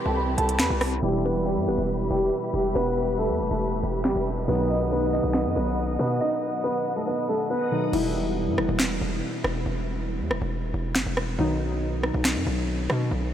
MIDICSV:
0, 0, Header, 1, 6, 480
1, 0, Start_track
1, 0, Key_signature, 1, "minor"
1, 0, Tempo, 431655
1, 1142, Time_signature, 4, 2, 24, 8
1, 14831, End_track
2, 0, Start_track
2, 0, Title_t, "String section"
2, 0, Program_c, 0, 48
2, 0, Note_on_c, 0, 48, 79
2, 0, Note_on_c, 0, 60, 73
2, 0, Note_on_c, 0, 64, 74
2, 0, Note_on_c, 0, 67, 92
2, 1104, Note_off_c, 0, 60, 0
2, 1104, Note_off_c, 0, 67, 0
2, 1105, Note_off_c, 0, 48, 0
2, 1105, Note_off_c, 0, 64, 0
2, 1141, Note_on_c, 0, 71, 69
2, 1141, Note_on_c, 0, 83, 81
2, 1142, Note_on_c, 0, 67, 76
2, 1142, Note_on_c, 0, 76, 67
2, 4944, Note_off_c, 0, 67, 0
2, 4944, Note_off_c, 0, 76, 0
2, 4944, Note_off_c, 0, 83, 0
2, 4984, Note_on_c, 0, 75, 68
2, 4985, Note_on_c, 0, 78, 68
2, 4985, Note_on_c, 0, 87, 83
2, 8777, Note_off_c, 0, 71, 0
2, 8785, Note_off_c, 0, 75, 0
2, 8785, Note_off_c, 0, 78, 0
2, 8785, Note_off_c, 0, 87, 0
2, 14831, End_track
3, 0, Start_track
3, 0, Title_t, "Upright piano"
3, 0, Program_c, 1, 0
3, 65, Note_on_c, 1, 81, 77
3, 73, Note_on_c, 1, 69, 66
3, 173, Note_off_c, 1, 81, 0
3, 178, Note_off_c, 1, 69, 0
3, 182, Note_on_c, 1, 83, 74
3, 191, Note_on_c, 1, 71, 56
3, 402, Note_off_c, 1, 83, 0
3, 407, Note_off_c, 1, 71, 0
3, 418, Note_on_c, 1, 81, 89
3, 426, Note_on_c, 1, 69, 61
3, 640, Note_off_c, 1, 81, 0
3, 644, Note_off_c, 1, 69, 0
3, 661, Note_on_c, 1, 83, 82
3, 670, Note_on_c, 1, 71, 62
3, 882, Note_off_c, 1, 83, 0
3, 886, Note_off_c, 1, 71, 0
3, 1145, Note_on_c, 1, 67, 90
3, 1153, Note_on_c, 1, 55, 67
3, 1364, Note_off_c, 1, 67, 0
3, 1368, Note_off_c, 1, 55, 0
3, 1384, Note_on_c, 1, 71, 77
3, 1393, Note_on_c, 1, 59, 63
3, 1603, Note_off_c, 1, 71, 0
3, 1608, Note_off_c, 1, 59, 0
3, 1621, Note_on_c, 1, 67, 86
3, 1630, Note_on_c, 1, 55, 64
3, 1842, Note_off_c, 1, 67, 0
3, 1846, Note_off_c, 1, 55, 0
3, 1865, Note_on_c, 1, 71, 79
3, 1873, Note_on_c, 1, 59, 56
3, 2084, Note_off_c, 1, 71, 0
3, 2088, Note_off_c, 1, 59, 0
3, 2340, Note_on_c, 1, 67, 83
3, 2349, Note_on_c, 1, 55, 65
3, 2792, Note_off_c, 1, 67, 0
3, 2797, Note_off_c, 1, 55, 0
3, 2826, Note_on_c, 1, 67, 79
3, 2834, Note_on_c, 1, 55, 60
3, 3044, Note_off_c, 1, 67, 0
3, 3049, Note_off_c, 1, 55, 0
3, 3059, Note_on_c, 1, 71, 105
3, 3068, Note_on_c, 1, 59, 84
3, 3512, Note_off_c, 1, 71, 0
3, 3517, Note_off_c, 1, 59, 0
3, 3543, Note_on_c, 1, 69, 80
3, 3552, Note_on_c, 1, 57, 62
3, 3881, Note_off_c, 1, 69, 0
3, 3886, Note_off_c, 1, 57, 0
3, 3903, Note_on_c, 1, 69, 81
3, 3912, Note_on_c, 1, 57, 59
3, 4467, Note_off_c, 1, 69, 0
3, 4472, Note_off_c, 1, 57, 0
3, 4504, Note_on_c, 1, 67, 84
3, 4514, Note_on_c, 1, 55, 61
3, 4723, Note_off_c, 1, 67, 0
3, 4728, Note_off_c, 1, 55, 0
3, 4981, Note_on_c, 1, 71, 85
3, 4990, Note_on_c, 1, 59, 66
3, 5201, Note_off_c, 1, 71, 0
3, 5206, Note_off_c, 1, 59, 0
3, 5228, Note_on_c, 1, 75, 82
3, 5237, Note_on_c, 1, 63, 57
3, 5445, Note_off_c, 1, 75, 0
3, 5450, Note_off_c, 1, 63, 0
3, 5468, Note_on_c, 1, 71, 75
3, 5477, Note_on_c, 1, 59, 61
3, 5685, Note_off_c, 1, 71, 0
3, 5690, Note_off_c, 1, 59, 0
3, 5706, Note_on_c, 1, 75, 84
3, 5716, Note_on_c, 1, 63, 66
3, 5924, Note_off_c, 1, 75, 0
3, 5929, Note_off_c, 1, 63, 0
3, 6187, Note_on_c, 1, 71, 83
3, 6195, Note_on_c, 1, 59, 63
3, 6636, Note_off_c, 1, 71, 0
3, 6640, Note_off_c, 1, 59, 0
3, 6669, Note_on_c, 1, 71, 78
3, 6677, Note_on_c, 1, 59, 59
3, 6885, Note_off_c, 1, 71, 0
3, 6890, Note_off_c, 1, 59, 0
3, 6903, Note_on_c, 1, 75, 103
3, 6912, Note_on_c, 1, 63, 77
3, 7354, Note_off_c, 1, 75, 0
3, 7359, Note_off_c, 1, 63, 0
3, 7382, Note_on_c, 1, 71, 84
3, 7391, Note_on_c, 1, 59, 64
3, 7720, Note_off_c, 1, 71, 0
3, 7725, Note_off_c, 1, 59, 0
3, 7741, Note_on_c, 1, 69, 73
3, 7751, Note_on_c, 1, 57, 55
3, 7852, Note_off_c, 1, 69, 0
3, 7857, Note_off_c, 1, 57, 0
3, 7860, Note_on_c, 1, 71, 72
3, 7868, Note_on_c, 1, 59, 55
3, 8081, Note_off_c, 1, 71, 0
3, 8085, Note_off_c, 1, 59, 0
3, 8103, Note_on_c, 1, 69, 80
3, 8112, Note_on_c, 1, 57, 59
3, 8323, Note_off_c, 1, 69, 0
3, 8328, Note_off_c, 1, 57, 0
3, 8340, Note_on_c, 1, 71, 80
3, 8348, Note_on_c, 1, 59, 59
3, 8561, Note_off_c, 1, 71, 0
3, 8565, Note_off_c, 1, 59, 0
3, 14831, End_track
4, 0, Start_track
4, 0, Title_t, "Synth keys"
4, 0, Program_c, 2, 88
4, 0, Control_c, 2, 64, 127
4, 0, Note_on_c, 2, 48, 82
4, 0, Note_on_c, 2, 52, 71
4, 0, Note_on_c, 2, 55, 75
4, 0, Note_on_c, 2, 64, 88
4, 1093, Note_off_c, 2, 48, 0
4, 1097, Note_off_c, 2, 52, 0
4, 1102, Note_off_c, 2, 55, 0
4, 1106, Note_off_c, 2, 64, 0
4, 1128, Note_on_c, 2, 47, 68
4, 1136, Note_on_c, 2, 52, 61
4, 1144, Note_on_c, 2, 55, 62
4, 1153, Note_on_c, 2, 64, 74
4, 1157, Control_c, 2, 64, 0
4, 1330, Control_c, 2, 64, 127
4, 4931, Note_off_c, 2, 47, 0
4, 4935, Note_off_c, 2, 52, 0
4, 4939, Note_off_c, 2, 55, 0
4, 4943, Note_off_c, 2, 64, 0
4, 4971, Note_on_c, 2, 47, 63
4, 4980, Note_on_c, 2, 51, 65
4, 4988, Note_on_c, 2, 54, 53
4, 4997, Note_on_c, 2, 63, 69
4, 5000, Control_c, 2, 64, 0
4, 5185, Control_c, 2, 64, 127
4, 8532, Note_off_c, 2, 47, 0
4, 8537, Note_off_c, 2, 51, 0
4, 8541, Note_off_c, 2, 54, 0
4, 8545, Note_off_c, 2, 63, 0
4, 8572, Note_on_c, 2, 47, 54
4, 8577, Note_on_c, 2, 51, 48
4, 8581, Note_on_c, 2, 54, 44
4, 8585, Note_on_c, 2, 63, 56
4, 8793, Note_off_c, 2, 47, 0
4, 8806, Note_on_c, 2, 47, 70
4, 8814, Note_on_c, 2, 52, 61
4, 8819, Note_off_c, 2, 51, 0
4, 8821, Note_off_c, 2, 54, 0
4, 8823, Note_on_c, 2, 55, 63
4, 8824, Note_off_c, 2, 63, 0
4, 8831, Note_on_c, 2, 64, 78
4, 8837, Control_c, 2, 64, 0
4, 9035, Control_c, 2, 64, 127
4, 12610, Note_off_c, 2, 47, 0
4, 12614, Note_off_c, 2, 52, 0
4, 12618, Note_off_c, 2, 55, 0
4, 12622, Note_off_c, 2, 64, 0
4, 12650, Note_on_c, 2, 47, 65
4, 12659, Note_on_c, 2, 51, 62
4, 12667, Note_on_c, 2, 54, 57
4, 12675, Control_c, 2, 64, 0
4, 12675, Note_on_c, 2, 63, 73
4, 12875, Control_c, 2, 64, 127
4, 14831, Note_off_c, 2, 47, 0
4, 14831, Note_off_c, 2, 51, 0
4, 14831, Note_off_c, 2, 54, 0
4, 14831, Note_off_c, 2, 63, 0
4, 14831, End_track
5, 0, Start_track
5, 0, Title_t, "808-style bass"
5, 0, Program_c, 3, 38
5, 62, Note_on_c, 3, 36, 104
5, 408, Note_off_c, 3, 36, 0
5, 422, Note_on_c, 3, 36, 111
5, 661, Note_on_c, 3, 40, 97
5, 678, Note_off_c, 3, 36, 0
5, 776, Note_off_c, 3, 40, 0
5, 782, Note_on_c, 3, 36, 101
5, 1128, Note_off_c, 3, 36, 0
5, 1142, Note_on_c, 3, 28, 101
5, 1742, Note_on_c, 3, 43, 99
5, 1758, Note_off_c, 3, 28, 0
5, 1861, Note_on_c, 3, 28, 98
5, 1878, Note_off_c, 3, 43, 0
5, 1976, Note_off_c, 3, 28, 0
5, 1981, Note_on_c, 3, 28, 101
5, 2327, Note_off_c, 3, 28, 0
5, 2341, Note_on_c, 3, 28, 103
5, 2572, Note_off_c, 3, 28, 0
5, 2821, Note_on_c, 3, 28, 106
5, 3052, Note_off_c, 3, 28, 0
5, 3063, Note_on_c, 3, 28, 106
5, 3663, Note_on_c, 3, 40, 97
5, 3679, Note_off_c, 3, 28, 0
5, 3782, Note_on_c, 3, 28, 96
5, 3799, Note_off_c, 3, 40, 0
5, 3896, Note_off_c, 3, 28, 0
5, 3902, Note_on_c, 3, 28, 102
5, 4143, Note_on_c, 3, 27, 98
5, 4159, Note_off_c, 3, 28, 0
5, 4256, Note_off_c, 3, 27, 0
5, 4262, Note_on_c, 3, 28, 109
5, 4502, Note_on_c, 3, 30, 96
5, 4519, Note_off_c, 3, 28, 0
5, 4616, Note_off_c, 3, 30, 0
5, 4622, Note_on_c, 3, 28, 99
5, 4968, Note_off_c, 3, 28, 0
5, 4983, Note_on_c, 3, 35, 109
5, 5789, Note_off_c, 3, 35, 0
5, 5823, Note_on_c, 3, 35, 108
5, 6063, Note_on_c, 3, 42, 99
5, 6080, Note_off_c, 3, 35, 0
5, 6177, Note_off_c, 3, 42, 0
5, 6183, Note_on_c, 3, 35, 104
5, 6643, Note_off_c, 3, 35, 0
5, 6663, Note_on_c, 3, 47, 108
5, 6893, Note_off_c, 3, 47, 0
5, 8821, Note_on_c, 3, 28, 105
5, 9422, Note_on_c, 3, 43, 98
5, 9438, Note_off_c, 3, 28, 0
5, 9542, Note_on_c, 3, 28, 102
5, 9559, Note_off_c, 3, 43, 0
5, 9656, Note_off_c, 3, 28, 0
5, 9661, Note_on_c, 3, 28, 104
5, 10007, Note_off_c, 3, 28, 0
5, 10022, Note_on_c, 3, 28, 102
5, 10253, Note_off_c, 3, 28, 0
5, 10501, Note_on_c, 3, 28, 109
5, 10732, Note_off_c, 3, 28, 0
5, 10742, Note_on_c, 3, 28, 103
5, 11342, Note_on_c, 3, 40, 102
5, 11358, Note_off_c, 3, 28, 0
5, 11463, Note_on_c, 3, 28, 102
5, 11479, Note_off_c, 3, 40, 0
5, 11576, Note_off_c, 3, 28, 0
5, 11582, Note_on_c, 3, 28, 107
5, 11823, Note_on_c, 3, 27, 102
5, 11840, Note_off_c, 3, 28, 0
5, 11937, Note_off_c, 3, 27, 0
5, 11943, Note_on_c, 3, 28, 109
5, 12182, Note_on_c, 3, 30, 98
5, 12199, Note_off_c, 3, 28, 0
5, 12296, Note_off_c, 3, 30, 0
5, 12303, Note_on_c, 3, 28, 99
5, 12648, Note_off_c, 3, 28, 0
5, 12662, Note_on_c, 3, 35, 111
5, 13469, Note_off_c, 3, 35, 0
5, 13503, Note_on_c, 3, 35, 104
5, 13742, Note_on_c, 3, 42, 99
5, 13759, Note_off_c, 3, 35, 0
5, 13856, Note_off_c, 3, 42, 0
5, 13863, Note_on_c, 3, 35, 106
5, 14324, Note_off_c, 3, 35, 0
5, 14341, Note_on_c, 3, 47, 111
5, 14572, Note_off_c, 3, 47, 0
5, 14582, Note_on_c, 3, 35, 108
5, 14831, Note_off_c, 3, 35, 0
5, 14831, End_track
6, 0, Start_track
6, 0, Title_t, "Drums"
6, 422, Note_on_c, 9, 42, 81
6, 534, Note_off_c, 9, 42, 0
6, 543, Note_on_c, 9, 42, 78
6, 652, Note_on_c, 9, 26, 91
6, 655, Note_off_c, 9, 42, 0
6, 662, Note_on_c, 9, 38, 120
6, 763, Note_off_c, 9, 26, 0
6, 773, Note_off_c, 9, 38, 0
6, 901, Note_on_c, 9, 37, 105
6, 901, Note_on_c, 9, 46, 52
6, 1012, Note_off_c, 9, 37, 0
6, 1012, Note_off_c, 9, 46, 0
6, 1380, Note_on_c, 9, 42, 80
6, 1491, Note_off_c, 9, 42, 0
6, 1860, Note_on_c, 9, 42, 85
6, 1972, Note_off_c, 9, 42, 0
6, 2097, Note_on_c, 9, 42, 74
6, 2209, Note_off_c, 9, 42, 0
6, 2463, Note_on_c, 9, 42, 72
6, 2575, Note_off_c, 9, 42, 0
6, 2821, Note_on_c, 9, 42, 71
6, 2932, Note_off_c, 9, 42, 0
6, 3062, Note_on_c, 9, 42, 70
6, 3174, Note_off_c, 9, 42, 0
6, 3300, Note_on_c, 9, 42, 80
6, 3411, Note_off_c, 9, 42, 0
6, 3781, Note_on_c, 9, 42, 83
6, 3892, Note_off_c, 9, 42, 0
6, 4018, Note_on_c, 9, 42, 73
6, 4129, Note_off_c, 9, 42, 0
6, 4383, Note_on_c, 9, 42, 75
6, 4492, Note_on_c, 9, 26, 90
6, 4495, Note_off_c, 9, 42, 0
6, 4502, Note_on_c, 9, 38, 113
6, 4502, Note_on_c, 9, 42, 78
6, 4583, Note_off_c, 9, 42, 0
6, 4583, Note_on_c, 9, 42, 61
6, 4604, Note_off_c, 9, 26, 0
6, 4613, Note_off_c, 9, 38, 0
6, 4663, Note_off_c, 9, 42, 0
6, 4663, Note_on_c, 9, 42, 44
6, 4741, Note_off_c, 9, 42, 0
6, 4741, Note_on_c, 9, 42, 70
6, 4852, Note_off_c, 9, 42, 0
6, 4983, Note_on_c, 9, 42, 71
6, 5094, Note_off_c, 9, 42, 0
6, 5220, Note_on_c, 9, 42, 80
6, 5332, Note_off_c, 9, 42, 0
6, 5701, Note_on_c, 9, 42, 81
6, 5812, Note_off_c, 9, 42, 0
6, 5932, Note_on_c, 9, 26, 96
6, 5938, Note_on_c, 9, 42, 74
6, 5942, Note_on_c, 9, 38, 118
6, 6043, Note_off_c, 9, 26, 0
6, 6049, Note_off_c, 9, 42, 0
6, 6053, Note_off_c, 9, 38, 0
6, 6305, Note_on_c, 9, 42, 74
6, 6416, Note_off_c, 9, 42, 0
6, 6662, Note_on_c, 9, 42, 69
6, 6773, Note_off_c, 9, 42, 0
6, 8822, Note_on_c, 9, 49, 94
6, 8933, Note_off_c, 9, 49, 0
6, 9541, Note_on_c, 9, 37, 92
6, 9652, Note_off_c, 9, 37, 0
6, 9771, Note_on_c, 9, 26, 94
6, 9781, Note_on_c, 9, 38, 117
6, 9882, Note_off_c, 9, 26, 0
6, 9892, Note_off_c, 9, 38, 0
6, 10501, Note_on_c, 9, 37, 99
6, 10613, Note_off_c, 9, 37, 0
6, 11462, Note_on_c, 9, 37, 95
6, 11573, Note_off_c, 9, 37, 0
6, 12172, Note_on_c, 9, 26, 91
6, 12182, Note_on_c, 9, 38, 114
6, 12284, Note_off_c, 9, 26, 0
6, 12293, Note_off_c, 9, 38, 0
6, 12421, Note_on_c, 9, 37, 101
6, 12532, Note_off_c, 9, 37, 0
6, 13382, Note_on_c, 9, 37, 93
6, 13493, Note_off_c, 9, 37, 0
6, 13612, Note_on_c, 9, 26, 96
6, 13621, Note_on_c, 9, 38, 123
6, 13723, Note_off_c, 9, 26, 0
6, 13733, Note_off_c, 9, 38, 0
6, 14341, Note_on_c, 9, 37, 103
6, 14452, Note_off_c, 9, 37, 0
6, 14831, End_track
0, 0, End_of_file